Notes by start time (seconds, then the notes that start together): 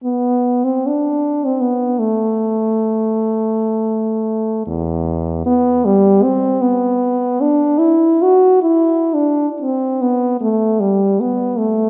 0.04 B3
0.64 C4
0.87 D4
1.45 C4
1.61 B3
2.00 A3
4.67 E2
5.46 B3
5.85 G3
6.23 C4
6.62 B3
7.41 D4
7.79 E4
8.22 F#4
8.62 E4
9.14 D4
9.62 C4
10.01 B3
10.41 A3
10.80 G3
11.20 B3
11.58 A3